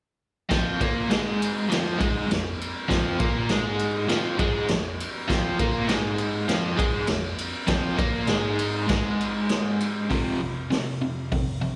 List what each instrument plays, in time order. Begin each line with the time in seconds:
0.50 overdriven electric guitar F2 F3, kick, snare, ride
0.80 overdriven electric guitar A#2 A#3, kick, ride
1.09 overdriven electric guitar G#2 G#3, snare, ride
1.42 ride
1.69 overdriven electric guitar F2 F3, snare, ride
1.98 overdriven electric guitar G#2 G#3, kick, ride
2.27 overdriven electric guitar F2, ride
2.32 snare
2.61 ride
2.89 overdriven electric guitar F2 F3, kick, snare, ride
3.19 overdriven electric guitar A#2 A#3, kick, ride
3.49 overdriven electric guitar G#2 G#3, snare, ride
3.79 ride
4.08 overdriven electric guitar F2 F3, snare, ride
4.38 overdriven electric guitar G#2 G#3, kick, ride
4.68 overdriven electric guitar F2, snare, ride
5.00 ride
5.28 overdriven electric guitar F2 F3, kick, snare, ride
5.58 overdriven electric guitar A#2 A#3, kick, ride
5.88 overdriven electric guitar G#2 G#3, snare, ride
6.18 ride
6.48 overdriven electric guitar F2 F3, snare, ride
6.76 overdriven electric guitar G#2 G#3, kick, ride
7.07 overdriven electric guitar F2, snare, ride
7.38 ride
7.67 overdriven electric guitar F2 F3, kick, snare, ride
7.96 overdriven electric guitar A#2 A#3, kick, ride
8.27 overdriven electric guitar G#2 G#3, snare, ride
8.59 ride
8.88 overdriven electric guitar G#2 G#3, kick, snare, ride
9.21 ride
9.49 snare, ride
9.81 ride
10.10 overdriven electric guitar F2 C3 F3, kick, open hi-hat
10.40 overdriven electric guitar F2 C3
10.71 overdriven electric guitar F2 C3, snare, open hi-hat
11.02 overdriven electric guitar F2 C3
11.32 overdriven electric guitar F2 C3, kick, open hi-hat
11.61 overdriven electric guitar F2 C3